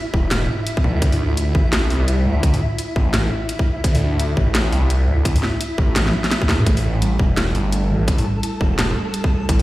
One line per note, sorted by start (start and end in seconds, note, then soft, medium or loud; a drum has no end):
0.00 6.67 E4 medium
0.14 0.48 E1 medium
0.14 kick loud
0.31 snare loud
0.31 closed hi-hat medium
0.31 mid tom medium
0.49 mid tom medium
0.67 closed hi-hat medium
0.77 kick loud
0.84 0.96 A#1 loud
0.84 kick medium
0.95 1.01 E2 loud
1.02 1.54 D2 loud
1.02 kick loud
1.02 closed hi-hat medium
1.12 mid tom medium
1.12 open hi-hat medium
1.37 closed hi-hat medium
1.55 1.89 A1 medium
1.55 kick loud
1.73 snare loud
1.73 closed hi-hat medium
1.90 2.27 C2 medium
1.90 open hi-hat soft
2.08 closed hi-hat medium
2.26 2.60 D2 medium
2.26 mid tom soft
2.43 kick loud
2.43 closed hi-hat medium
2.54 mid tom medium
2.54 open hi-hat medium
2.79 closed hi-hat medium
2.96 3.30 A1 medium
2.96 kick loud
3.14 snare loud
3.14 closed hi-hat medium
3.14 mid tom medium
3.49 closed hi-hat medium
3.59 kick loud
3.84 4.36 D2 loud
3.84 kick loud
3.84 closed hi-hat medium
3.95 mid tom medium
3.95 open hi-hat medium
4.20 closed hi-hat medium
4.37 4.71 A1 medium
4.37 kick loud
4.55 snare loud
4.55 closed hi-hat medium
4.72 5.09 C2 medium
4.72 open hi-hat soft
4.90 closed hi-hat medium
5.08 5.42 D2 medium
5.08 mid tom soft
5.25 kick loud
5.25 closed hi-hat medium
5.36 mid tom medium
5.36 open hi-hat medium
5.43 snare medium
5.61 closed hi-hat medium
5.78 6.13 A1 medium
5.78 kick loud
5.96 snare loud
5.96 closed hi-hat medium
5.96 mid tom medium
5.96 high tom medium
6.07 snare medium
6.14 high tom medium
6.24 snare medium
6.24 closed hi-hat soft
6.31 snare medium
6.31 closed hi-hat medium
6.42 kick loud
6.49 6.61 E2 loud
6.49 kick medium
6.49 snare loud
6.49 open hi-hat soft
6.59 6.66 A2 loud
6.59 mid tom medium
6.66 7.19 A1 loud
6.66 7.00 A3 medium
6.66 9.62 A4 medium
6.66 kick loud
6.66 closed hi-hat medium
6.77 mid tom medium
6.77 open hi-hat medium
7.02 7.36 G3 medium
7.02 closed hi-hat medium
7.19 7.54 E1 medium
7.19 kick loud
7.37 7.53 E4 medium
7.37 snare loud
7.37 closed hi-hat medium
7.55 7.92 G1 medium
7.55 7.71 G3 medium
7.55 open hi-hat soft
7.72 8.06 A3 medium
7.72 closed hi-hat medium
7.90 8.24 A1 medium
7.90 mid tom soft
8.08 8.42 G3 medium
8.08 kick loud
8.08 closed hi-hat medium
8.18 mid tom medium
8.18 open hi-hat medium
8.43 8.59 E4 medium
8.43 closed hi-hat medium
8.61 8.95 E1 medium
8.61 8.77 G3 medium
8.61 kick loud
8.78 9.12 A3 medium
8.78 snare loud
8.78 closed hi-hat medium
8.78 mid tom medium
9.14 9.47 G3 medium
9.14 closed hi-hat medium
9.24 kick loud
9.49 9.62 A1 loud
9.49 9.62 E4 medium
9.49 kick loud
9.49 closed hi-hat medium